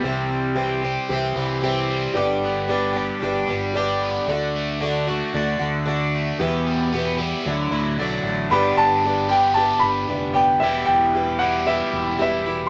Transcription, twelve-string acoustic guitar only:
X:1
M:4/4
L:1/8
Q:1/4=113
K:G
V:1 name="Twelve-string acoustic guitar"
[C,E,G,CG]2 [C,E,G,CG] [G,CG] [E,G,CG] [G,CG] [C,E,G,CG]2 | [G,,D,G,B,DG]2 [G,,D,G,B,DG] [G,B,DG] [G,B,DG] [G,B,DG] [G,,D,G,B,DG]2 | [D,A,DF]2 [D,A,DF] [A,DF] [D,A,DF] [A,DF] [D,A,DF]2 | [E,,B,,E,G,B,G]2 [E,,B,,E,G,B,G] [E,G,B,G] [F,A,DE] [A,DE] [D,F,A,DE]2 |
[G,,D,G,B,DG]2 [G,B,DG] [G,B,DG] [G,B,DG]2 [G,B,DG] [G,B,DG] | [E,,B,,E,G,EG]2 [E,G,EG] [E,G,EG] [E,G,EG]2 [E,G,EG] [E,G,EG] |]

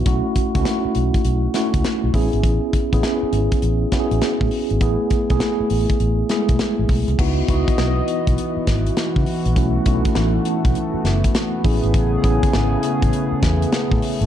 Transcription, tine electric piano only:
X:1
M:4/4
L:1/16
Q:"Swing 16ths" 1/4=101
K:C#m
V:1 name="Tine electric piano"
[A,CEF]2 z [A,CDEF]4- [A,CDEF] z2 [A,CEF]4 [B,CEG]2- | [B,CEG]2 z [B,CEG]4- [B,CEG] z2 [B,CEFG]4 z2 | [A,B,EG]2 z [A,B,EG]4- [A,B,EG] z2 [G,A,B,EG]4 z2 | [B,DEF] z [B,DEF]6 z8 |
[A,CEF] z [A,CDEF]6 z6 [B,CEG]2- | [B,CEG] z [B,CEG]6 z8 |]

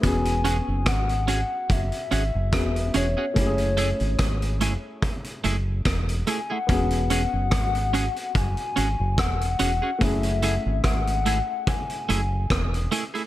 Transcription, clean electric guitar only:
X:1
M:4/4
L:1/16
Q:"Swing 16ths" 1/4=72
K:E
V:1 name="Clean electric guitar"
z2 [CFG] z3 [CFG] z3 [CFG] z3 [CFG] [CFG] | z2 [A,EG] z3 [A,EG] z3 [A,EG] z3 [A,EG] [A,EG] | z2 [CFG] z3 [CFG] z3 [CFG] z3 [CFG] [CFG] | z2 [A,EG] z3 [A,EG] z3 [A,EG] z3 [A,EG] [A,EG] |]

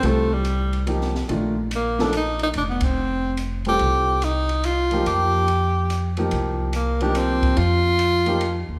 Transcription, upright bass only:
X:1
M:3/4
L:1/8
Q:"Swing" 1/4=143
K:Fmix
V:1 name="Upright bass" clef=bass
C,,6 | B,,,6 | F,,,6 | C,,6 |
F,,6 | C,,6 | F,,4- F,, E,, |]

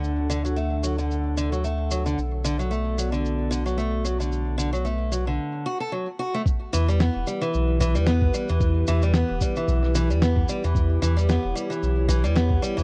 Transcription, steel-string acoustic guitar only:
X:1
M:4/4
L:1/16
Q:"Swing 16ths" 1/4=112
K:Edor
V:1 name="Steel-string acoustic guitar" clef=bass
D,2 D, F, A,2 F, D,3 D, F, A,2 F, D, | z2 D, F, A,2 F, D,3 D, F, A,2 F, D,- | D,2 D, F, A,2 F, D,3 F A F, z F A, | z2 E, G, B,2 G, E,3 E, G, B,2 G, E,- |
E,2 E, G, B,2 G, E,3 E, G, B,2 G, E,- | E,2 E, G, B,2 G, E,3 E, G, B,2 G, E, |]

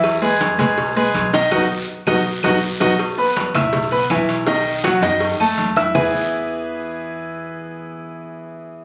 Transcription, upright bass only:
X:1
M:4/4
L:1/8
Q:1/4=162
K:E
V:1 name="Upright bass" clef=bass
E,,3 B,,,3 B,,,2 | B,,, z2 B,,, z B,,, z B,,, | z3 B,,,3 B,,,2- | B,,,3 F,,2 F,, E,,2 |
E,,8- | E,,8 |]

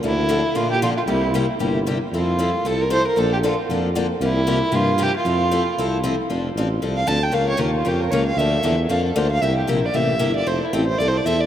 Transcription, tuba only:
X:1
M:4/4
L:1/8
Q:"Swing" 1/4=230
K:F
V:1 name="Tuba" clef=bass
D,,4 B,,4 | C,,4 G,,,4 | F,,4 C,,4 | B,,,4 F,,4 |
C,,4 G,,4 | F,,4 C,,4 | F,,,2 A,,,2 C,,2 D,,2 | _D,,2 _E,,2 F,,2 D,,2 |
D,,2 E,,2 F,,2 D,,2 | C,,2 B,,,2 A,,,2 G,,,2 | F,,, z A,,,2 C,,2 E,,2 |]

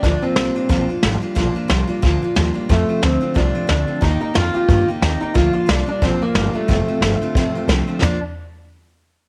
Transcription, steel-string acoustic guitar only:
X:1
M:4/4
L:1/8
Q:"Swing" 1/4=180
K:Bb
V:1 name="Steel-string acoustic guitar"
[B,,F,B,DF] [B,DF] [F,B,DF] [B,DF] [B,,F,B,DF] [B,DF] [F,B,DF] [B,DF] | [B,,F,B,DF] [B,DF] [F,B,DF] [B,DF] [B,,F,B,DF] [B,DF] [F,B,DF] [B,DF] | [F,,C,F,A,CF] [F,A,CF] [F,A,CF] [F,A,CF] [F,,C,F,A,CF] [F,A,CF] [F,A,CF] [F,A,CF] | [E,B,EG] [B,EG] [E,B,EG] [B,EG] [E,B,EG] [B,EG] [E,B,EG] [B,EG] |
[B,,F,B,DF] [B,DF] [F,B,DF] [B,DF] [B,,F,B,DF] [B,DF] [F,B,DF] [B,DF] | [F,,C,F,A,CF] [F,A,CF] [F,A,CF] [F,A,CF] [F,,C,F,A,CF] [F,A,CF] [F,A,CF] [F,A,CF] | [B,,F,B,DF] z6 z |]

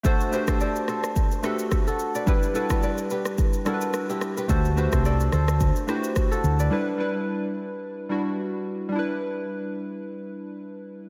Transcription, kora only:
X:1
M:4/4
L:1/16
Q:"Swing 16ths" 1/4=108
K:Em
V:1 name="Kora"
[FA] z [GB] [Ac] [Ad] z [Ac] z3 [GB] z2 [FA] z [Bd] | [EG] z [FA] [GB] [Bd] z [GB] z3 [FA] z2 [EG] z [GB] | [FA] z [GB] [Ac] [Ad] z [Ac] z3 [GB] z2 [FA] z [Bd] | z16 |
z16 |]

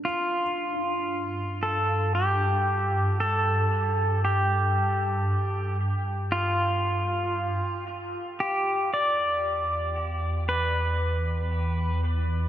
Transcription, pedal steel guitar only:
X:1
M:4/4
L:1/8
Q:1/4=58
K:Gmix
V:1 name="Pedal steel guitar"
F3 A G2 A2 | G3 z F3 z | G d3 B3 z |]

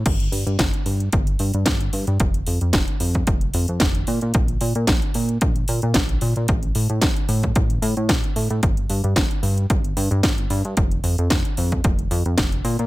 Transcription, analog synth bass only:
X:1
M:4/4
L:1/16
Q:"Swing 16ths" 1/4=112
K:Gm
V:1 name="Analog synth bass" clef=bass
G,,,2 G,, G,, G,,, z G,,2 G,,,2 G,, G,, G,,,2 G,, G,, | F,,,2 F,, F,, F,,, z F,,2 F,,,2 F,, F,, F,,,2 B,, B,, | B,,,2 B,, B,, B,,, z B,,2 B,,,2 B,, B,, B,,,2 B,, B,, | A,,,2 A,, A,, A,,, z A,,2 A,,,2 A,, A,, A,,, z A,, A,, |
G,,,2 G,, G,, G,,, z G,,2 G,,,2 G,, G,, G,,,2 G,, G,, | F,,,2 F,, F,, F,,, z F,,2 F,,,2 F,, F,, F,,,2 B,, B,, |]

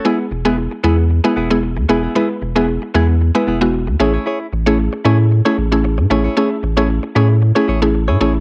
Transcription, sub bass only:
X:1
M:4/4
L:1/16
Q:1/4=114
K:E
V:1 name="Sub bass" clef=bass
z2 E,,,4 E,,4 E,,,3 E,, E,,,2 | z2 E,,,4 E,,4 E,,,3 E,, A,,,2 | z2 A,,,4 A,,4 A,,,3 A,, A,,,2 | z2 A,,,4 A,,4 A,,,3 A,, A,,,2 |]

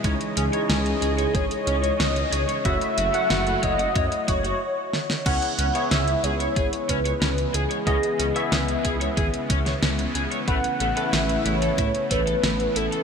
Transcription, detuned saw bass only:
X:1
M:4/4
L:1/8
Q:1/4=92
K:C#m
V:1 name="Detuned saw bass" clef=bass
C,, C,, C,, C,, G,,, C,, C,, C,, | F,,, F,,, F,,, F,,, F,, F,,, z2 | C,, C,, C,, C,, G,,, C,, C,, C,, | C,, C,, C,, C,, G,,, C,, C,, C,, |
A,,, A,,, A,,, A,,, A,, A,,, A,,, A,,, |]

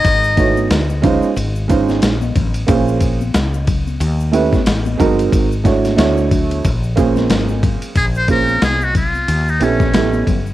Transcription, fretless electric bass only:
X:1
M:4/4
L:1/16
Q:"Swing 16ths" 1/4=91
K:Abmix
V:1 name="Fretless electric bass" clef=bass
A,,,4 =D,,3 z A,,,4 B,,,2 =A,,,2 | B,,,4 D,,4 E,,3 z =A,,,2 =G,,,2 | A,,,4 =D,,4 B,,,4 A,,,3 z | B,,,4 C,,4 E,,2 B,,,2 =A,,,2 =G,,,2 |]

